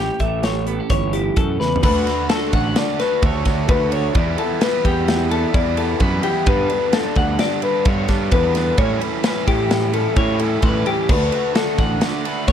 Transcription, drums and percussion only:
0.20 kick medium
0.20 closed hi-hat medium
0.43 snare loud
0.43 closed hi-hat medium
0.67 closed hi-hat medium
0.90 kick loud
0.90 snare soft
0.90 closed hi-hat medium
1.13 closed hi-hat medium
1.36 kick loud
1.36 closed hi-hat medium
1.61 snare medium
1.76 floor tom medium
1.83 kick loud
1.83 crash loud
2.07 snare soft
2.07 ride medium
2.29 snare loud
2.29 ride loud
2.53 kick medium
2.53 ride medium
2.76 snare loud
2.76 ride loud
2.99 snare soft
2.99 ride medium
3.22 kick loud
3.22 ride loud
3.45 kick medium
3.45 snare soft
3.45 ride medium
3.68 kick loud
3.68 ride loud
3.92 ride medium
4.15 kick loud
4.15 ride loud
4.38 ride medium
4.61 snare loud
4.61 ride loud
4.85 kick medium
4.85 ride medium
5.08 snare loud
5.08 ride loud
5.31 ride medium
5.54 kick loud
5.54 ride loud
5.77 ride medium
6.00 kick loud
6.00 ride loud
6.23 ride medium
6.46 kick loud
6.46 ride loud
6.70 ride medium
6.93 snare loud
6.93 ride loud
7.15 kick medium
7.15 ride medium
7.39 snare loud
7.39 ride loud
7.62 ride medium
7.85 kick loud
7.85 ride loud
8.08 kick medium
8.08 snare soft
8.08 ride medium
8.31 kick loud
8.31 ride loud
8.55 snare soft
8.55 ride medium
8.78 kick loud
8.78 ride loud
9.01 ride medium
9.24 snare loud
9.24 ride loud
9.47 kick medium
9.47 ride medium
9.71 snare loud
9.71 ride loud
9.93 ride medium
10.16 kick loud
10.16 ride loud
10.39 ride medium
10.62 kick loud
10.62 ride loud
10.86 ride medium
11.09 kick loud
11.09 crash loud
11.32 ride medium
11.55 snare loud
11.55 ride loud
11.78 kick medium
11.78 ride medium
12.01 snare loud
12.01 ride loud
12.25 ride medium
12.48 kick loud
12.48 snare soft
12.48 ride loud

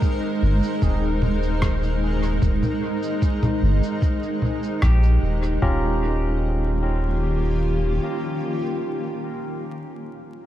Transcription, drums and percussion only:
0.02 kick loud
0.02 shaker medium
0.63 shaker soft
0.82 kick loud
0.82 shaker medium
1.22 low conga medium
1.43 shaker soft
1.62 kick loud
1.62 cross-stick medium
1.62 shaker medium
1.83 shaker soft
2.23 shaker soft
2.42 kick loud
2.42 shaker medium
2.63 low conga medium
2.63 shaker soft
3.03 shaker soft
3.22 kick loud
3.22 shaker medium
3.43 low conga medium
3.43 shaker soft
3.83 shaker soft
4.02 kick loud
4.02 shaker medium
4.23 shaker soft
4.42 low conga medium
4.63 shaker soft
4.82 kick loud
4.82 cross-stick medium
4.82 shaker medium
5.03 shaker soft
5.43 shaker soft
5.62 kick loud

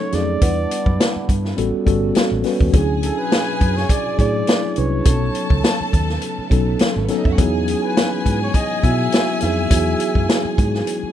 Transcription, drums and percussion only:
0.12 snare soft
0.12 closed hi-hat medium
0.41 kick loud
0.41 closed hi-hat loud
0.71 closed hi-hat loud
0.86 kick medium
1.00 snare loud
1.00 closed hi-hat medium
1.29 kick medium
1.29 closed hi-hat medium
1.45 snare soft
1.58 closed hi-hat medium
1.87 kick medium
1.87 closed hi-hat medium
2.15 snare loud
2.15 closed hi-hat medium
2.44 snare soft
2.44 open hi-hat medium
2.61 kick medium
2.73 kick loud
2.73 closed hi-hat loud
3.03 closed hi-hat medium
3.32 snare loud
3.32 closed hi-hat medium
3.61 kick medium
3.61 closed hi-hat medium
3.77 snare soft
3.89 kick loud
3.89 closed hi-hat medium
4.19 kick medium
4.19 closed hi-hat medium
4.47 snare loud
4.47 closed hi-hat medium
4.76 closed hi-hat medium
5.05 kick loud
5.05 closed hi-hat loud
5.35 closed hi-hat medium
5.50 kick medium
5.64 snare loud
5.64 closed hi-hat medium
5.93 kick medium
5.93 closed hi-hat medium
6.09 snare soft
6.21 closed hi-hat medium
6.51 kick medium
6.51 closed hi-hat medium
6.79 snare loud
6.79 closed hi-hat medium
7.08 snare soft
7.08 closed hi-hat medium
7.25 kick medium
7.38 kick loud
7.38 closed hi-hat loud
7.68 closed hi-hat medium
7.97 snare loud
7.97 closed hi-hat medium
8.26 kick medium
8.26 closed hi-hat medium
8.54 kick medium
8.54 closed hi-hat medium
8.83 kick medium
8.83 closed hi-hat medium
9.12 snare loud
9.12 closed hi-hat medium
9.40 snare soft
9.40 closed hi-hat medium
9.71 kick loud
9.71 closed hi-hat loud
10.00 closed hi-hat medium
10.15 kick medium
10.29 snare loud
10.29 closed hi-hat medium
10.58 kick medium
10.58 closed hi-hat medium
10.74 snare soft
10.87 closed hi-hat medium

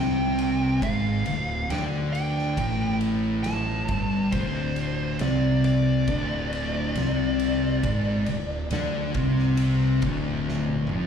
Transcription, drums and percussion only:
0.39 ride medium
0.82 kick loud
0.82 ride medium
1.26 ride medium
1.70 snare loud
1.70 ride medium
2.15 ride medium
2.38 snare soft
2.57 kick loud
2.57 ride loud
3.01 ride medium
3.44 snare loud
3.44 ride loud
3.88 kick loud
3.88 ride medium
4.32 kick loud
4.32 ride loud
4.76 ride medium
5.19 snare loud
5.19 ride medium
5.64 ride medium
6.08 kick loud
6.08 ride medium
6.53 ride medium
6.96 snare loud
6.96 ride medium
7.40 ride medium
7.84 kick loud
7.84 ride medium
8.26 ride medium
8.71 snare loud
8.71 ride medium
9.14 kick loud
9.14 ride medium
9.39 snare soft
9.57 ride medium
10.02 kick loud
10.02 ride medium
10.48 snare medium
10.68 high tom medium
10.89 mid tom medium

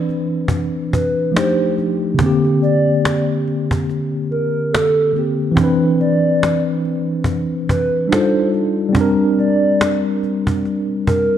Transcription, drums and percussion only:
0.09 cajon slap soft
0.48 cajon bass medium
0.93 cajon bass medium
1.37 cajon slap loud
1.78 cajon slap soft
2.19 cajon bass loud
2.45 cajon slap soft
2.63 cajon slap soft
3.05 cajon slap loud
3.48 cajon slap soft
3.71 cajon bass medium
3.89 cajon slap soft
4.32 cajon slap soft
4.74 cajon slap loud
5.16 cajon slap soft
5.57 cajon bass loud
6.01 cajon slap soft
6.43 cajon slap medium
6.85 cajon slap soft
7.24 cajon bass medium
7.69 cajon bass medium
8.12 cajon slap loud
8.54 cajon slap soft
8.95 cajon bass loud
9.39 cajon slap soft
9.81 cajon slap loud
10.23 cajon slap soft
10.47 cajon bass medium
10.65 cajon slap soft
11.07 cajon bass medium

